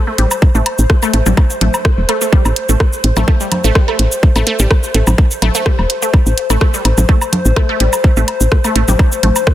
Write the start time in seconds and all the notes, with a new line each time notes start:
Already playing: C5
0.07 A3
0.18 A1 G3, closed hi-hat
0.31 low woodblock, shaker
0.42 kick
0.55 A1 A3, shaker
0.66 closed hi-hat, low woodblock
0.79 A1, shaker
0.90 kick, cross-stick
1.02 A3, low woodblock, shaker
1.14 A1 A3, closed hi-hat
1.26 A1 G3, low conga, shaker
1.37 kick, low woodblock
1.50 shaker
1.61 A1 A3, closed hi-hat, low conga
1.74 low woodblock, shaker
1.85 kick, cross-stick
1.98 E1
2.09 A3, closed hi-hat, low woodblock
2.21 A3, shaker
2.33 G3, kick
2.45 A1, low woodblock, shaker
2.56 closed hi-hat
2.69 A1 A3, shaker
2.80 kick, cross-stick, low woodblock
2.93 shaker
3.04 A1, closed hi-hat
3.17 A1 A3, low conga, low woodblock, shaker
3.28 A3, kick
3.40 G3, shaker
3.52 closed hi-hat, low conga, low woodblock
3.64 A1 A3, shaker
3.75 G3, kick, cross-stick
3.88 A3, low woodblock
3.99 A1, closed hi-hat
4.12 shaker
4.23 kick
4.36 A1 A3, low woodblock, shaker
4.47 A3, closed hi-hat
4.59 A1 G3, shaker
4.71 kick, cross-stick, low woodblock
4.83 shaker
4.94 A1 A3, closed hi-hat
5.07 A1, low conga, low woodblock, shaker
5.18 kick
5.31 shaker
5.42 A1 A3, closed hi-hat, low conga, low woodblock
5.55 A3, shaker
5.66 G3, kick, cross-stick
5.79 E1, low woodblock
5.90 closed hi-hat
6.02 A3, shaker
6.14 kick, low woodblock
6.26 A1, shaker
6.38 closed hi-hat
6.50 A1 A3, low woodblock, shaker
6.61 A3, kick, cross-stick
6.74 G3, shaker
6.85 A1, closed hi-hat, low woodblock
6.98 A1, low conga, shaker
7.09 A3, kick
7.21 low woodblock, shaker
7.33 closed hi-hat, low conga
7.45 A1, shaker
7.56 A3, kick, cross-stick, low woodblock
7.69 A3
7.80 A1 G3, closed hi-hat
7.93 low woodblock, shaker
8.04 kick
8.17 A1 A3, shaker
8.28 closed hi-hat, low woodblock
8.41 A1, shaker
8.52 kick, cross-stick
8.64 A3, low woodblock, shaker
8.76 A1 A3, closed hi-hat
8.88 A1 G3, low conga, shaker
8.99 kick, low woodblock
9.12 shaker
9.23 A1 A3, closed hi-hat, low conga
9.36 low woodblock, shaker
9.47 kick, cross-stick